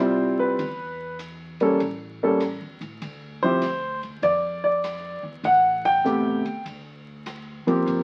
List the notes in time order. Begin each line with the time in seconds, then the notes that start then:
Already playing: C2 C5
0.00 G3 C4 E4 F4
0.39 B4
0.59 E2, ride
1.19 hi-hat pedal, ride
1.60 G3 A#3 C#4 A4, ride
1.80 A1, ride
2.23 G3 A#3 C#4 A4
2.40 cross-stick, hi-hat pedal, ride
2.61 E2
2.81 A2, ride
3.02 D2, ride
3.43 F3 C4 E4 G4 C5
3.62 snare, hi-hat pedal, ride
4.03 kick, ride
4.22 F2 D5, ride
4.64 D5
4.84 cross-stick, hi-hat pedal, ride
5.23 E2
5.43 A1 F#5, ride
5.85 G5, kick, ride
6.04 C3 A3 B3 G4, hi-hat pedal
6.45 muted upright bass stroke, ride
6.65 D2, ride
7.26 cross-stick, hi-hat pedal, ride
7.66 F3 A#3 C4 G4, muted upright bass stroke, ride
7.86 G1, ride